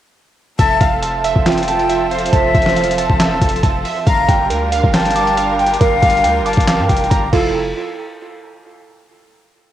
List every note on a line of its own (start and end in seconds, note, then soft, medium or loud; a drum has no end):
0.59 0.80 F1 loud
0.59 4.03 F3 medium
0.59 4.03 C4 medium
0.59 4.03 F4 medium
0.59 4.03 A4 medium
0.59 1.23 E5 loud
0.59 1.00 A5 loud
0.59 kick loud
0.59 closed hi-hat medium
0.80 1.34 F1 loud
0.80 2.11 F5 medium
0.80 kick loud
0.80 closed hi-hat medium
1.02 1.67 A5 medium
1.02 closed hi-hat medium
1.24 1.88 E5 loud
1.24 closed hi-hat medium
1.36 2.29 F1 loud
1.36 kick medium
1.46 2.76 F4 medium
1.46 2.07 G5 medium
1.46 snare loud
1.46 clap loud
1.46 closed hi-hat soft
1.52 closed hi-hat medium
1.58 closed hi-hat medium
1.63 closed hi-hat medium
1.68 2.32 A5 medium
1.68 closed hi-hat medium
1.79 closed hi-hat soft
1.89 2.54 E5 loud
1.89 closed hi-hat medium
2.11 3.42 C5 medium
2.11 2.32 F5 medium
2.11 closed hi-hat soft
2.18 closed hi-hat medium
2.26 closed hi-hat medium
2.33 2.54 F1 loud
2.33 2.94 E5 loud
2.33 2.97 A5 medium
2.33 kick loud
2.33 closed hi-hat medium
2.55 3.07 F1 loud
2.55 3.18 E5 loud
2.55 kick loud
2.55 closed hi-hat soft
2.62 closed hi-hat soft
2.66 snare medium
2.66 closed hi-hat medium
2.76 4.05 F5 medium
2.76 closed hi-hat medium
2.84 closed hi-hat medium
2.91 closed hi-hat medium
2.98 4.03 A5 medium
2.98 3.62 A5 medium
2.98 closed hi-hat medium
3.10 3.40 F1 loud
3.10 kick medium
3.20 3.84 E5 loud
3.20 snare loud
3.20 clap loud
3.20 closed hi-hat medium
3.42 3.62 F1 loud
3.42 kick medium
3.42 closed hi-hat medium
3.49 closed hi-hat medium
3.56 closed hi-hat soft
3.63 3.84 F1 loud
3.63 4.07 A5 medium
3.63 kick loud
3.63 closed hi-hat medium
3.85 4.07 E5 loud
3.85 open hi-hat medium
4.06 4.28 G1 loud
4.06 7.30 G3 medium
4.06 7.30 D4 medium
4.06 7.30 F4 medium
4.06 7.30 A#4 medium
4.06 4.71 F5 loud
4.06 4.48 A#5 loud
4.06 kick loud
4.06 closed hi-hat medium
4.28 4.52 G1 loud
4.28 4.92 G5 medium
4.28 kick loud
4.28 closed hi-hat medium
4.50 4.82 D2 loud
4.50 5.80 A#4 medium
4.50 closed hi-hat medium
4.72 5.36 F5 loud
4.72 closed hi-hat medium
4.84 5.77 G1 loud
4.84 kick medium
4.94 5.58 G5 medium
4.94 5.55 A5 loud
4.94 snare loud
4.94 clap loud
4.94 closed hi-hat soft
5.00 closed hi-hat medium
5.05 closed hi-hat medium
5.10 closed hi-hat medium
5.15 6.45 D6 medium
5.15 closed hi-hat medium
5.27 closed hi-hat soft
5.37 6.01 F5 loud
5.37 closed hi-hat medium
5.59 6.23 G5 medium
5.59 5.80 G5 medium
5.59 closed hi-hat soft
5.66 closed hi-hat medium
5.74 closed hi-hat medium
5.81 6.02 G1 loud
5.81 7.11 A#4 medium
5.81 6.42 F5 loud
5.81 kick loud
5.81 closed hi-hat medium
6.02 6.26 G1 loud
6.02 6.67 F5 loud
6.02 kick loud
6.02 closed hi-hat medium
6.10 closed hi-hat medium
6.17 closed hi-hat soft
6.24 6.42 D2 loud
6.24 7.33 G5 medium
6.24 closed hi-hat medium
6.41 6.57 G1 loud
6.46 6.87 A5 medium
6.46 7.33 D6 medium
6.46 closed hi-hat soft
6.53 closed hi-hat medium
6.57 6.81 G1 loud
6.57 kick medium
6.57 closed hi-hat medium
6.68 7.33 F5 medium
6.68 snare loud
6.68 clap loud
6.68 closed hi-hat medium
6.79 6.89 G2 loud
6.89 7.10 F1 loud
6.89 7.30 G5 medium
6.89 kick medium
6.89 closed hi-hat medium
6.97 closed hi-hat medium
7.04 closed hi-hat soft
7.11 7.32 G1 loud
7.11 7.33 A#5 medium
7.11 kick loud
7.11 closed hi-hat medium
7.33 7.73 F1 loud
7.33 7.53 F3 medium
7.33 7.53 C4 medium
7.33 7.53 E4 medium
7.33 7.53 F4 medium
7.33 7.53 A4 medium
7.33 7.53 A4 loud
7.33 7.53 F5 medium
7.33 kick loud
7.33 crash medium